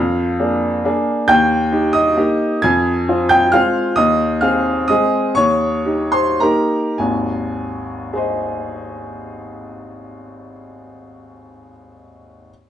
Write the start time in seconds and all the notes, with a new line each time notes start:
Already playing: F2 F5 F6
0.40 A#3 D4 G#4
0.85 A#3 D4 G#4
1.28 D#2 G5 G6
1.72 D#4 G4
1.93 D#5 D#6
2.17 A#3 D#4 G4
2.62 F2 G#5 G#6
3.08 C4 F4
3.29 G5 G6
3.52 G#3 C4 F4 F5 F6
3.96 D#2 D#5 D#6
4.41 C4 G#4 F5 F6
4.88 G#3 C4 G#4 D#5 D#6
5.35 D#2 C#5 C#6
5.85 D#4 G4
6.12 C5 C6
6.40 A#3 D#4 G4 A#4 A#5
6.98 G#1 D#2 G#5
8.13 G#4 C5
8.18 D#5